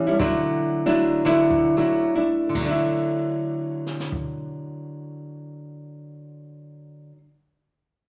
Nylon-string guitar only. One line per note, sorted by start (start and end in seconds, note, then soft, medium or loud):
0.07 0.19 G3 soft
0.07 0.20 C#4 soft
0.07 0.19 E4 soft
0.19 0.86 D3 medium
0.19 0.87 F#3 medium
0.19 0.86 A3 medium
0.19 0.86 D4 medium
0.19 0.86 E4 medium
0.86 1.24 D3 medium
0.86 1.24 F#3 medium
0.86 1.24 A3 medium
0.86 1.25 D4 medium
0.86 1.25 E4 medium
1.25 1.81 D3 medium
1.25 1.76 F#3 medium
1.25 1.77 A3 medium
1.25 1.78 D4 medium
1.25 1.78 E4 medium
1.77 2.16 F#3 medium
1.77 2.16 A3 medium
1.77 2.15 D4 medium
1.77 2.14 E4 medium
2.15 2.55 A3 soft
2.15 2.55 D4 soft
2.15 2.55 E4 medium
2.49 7.12 D3 medium
2.55 7.18 F#3 medium
2.61 7.23 A3 medium
2.66 7.28 D4 medium
2.70 7.32 E4 medium